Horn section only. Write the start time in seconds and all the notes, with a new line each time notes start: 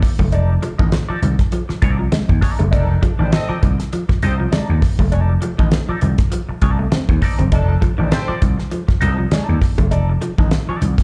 2.72 D#3 D4 A4
3.20 A3 G4 C5
3.33 C4 A4 D#5
4.24 A3 G4 C5
7.52 D#3 D4 A4
7.98 A3 G4 C5
8.11 A3 G4 C5
9.01 D#3 D4 A4